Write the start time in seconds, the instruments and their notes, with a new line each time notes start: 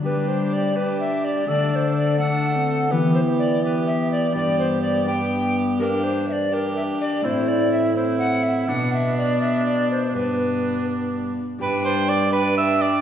0.02 trombone G3, harp G3 B3 D4, viola D4, cor anglais G4, recorder B4
0.28 recorder C5
0.53 recorder D5
0.76 viola D4, cor anglais G4, recorder B4
1.00 recorder E5
1.25 recorder D5
1.46 trombone D3, harp D3 A3 D4, viola D4, cor anglais A4, recorder D5
1.71 recorder D5
1.76 recorder C5
1.97 recorder D5
2.19 harp A3 D4, viola D4, cor anglais A4, recorder F#5
2.55 viola C4
2.89 trombone E3, harp E3 E4 G4, viola B3, cor anglais G4, recorder B4
3.14 recorder C5
3.39 recorder D5
3.63 viola B3, cor anglais G4, recorder B4
3.87 recorder E5
4.12 recorder D5
4.32 trombone G2, harp G2 B3 D4 G4, viola B3, cor anglais G4
4.36 recorder D5
4.59 recorder C5
4.82 recorder D5
5.05 harp B3 D4 G4, viola B3, cor anglais G4, recorder G5
5.77 harp A#3 D4 G4, viola D4, cor anglais G4, recorder A#4
6.03 recorder C5
6.29 recorder D5 E5
6.51 viola D4, cor anglais G4, recorder A#4
6.76 recorder E5
7.01 recorder D5
7.21 trombone A2, harp A2 A3 C4 E4, viola C4, cor anglais E4, recorder C5
7.48 recorder D5
7.72 recorder E5
7.96 viola C4, cor anglais E4, recorder C5
8.19 recorder F#5
8.43 recorder E5
8.67 trombone B2, harp B2 B3 D4, viola B3, cor anglais D4, recorder F#5
8.93 recorder E5
9.18 recorder D5
9.41 recorder E5
9.66 recorder D5
9.91 recorder C5
10.12 trombone G2, harp G2 B3 D4, viola B3, cor anglais D4, recorder B4
11.58 trombone G2, harp G2 D4 G4, viola D4, cor anglais B4, recorder G5
11.85 cor anglais C5
12.09 cor anglais D5
12.33 viola D4, cor anglais B4, recorder G5
12.58 cor anglais E5
12.82 cor anglais D5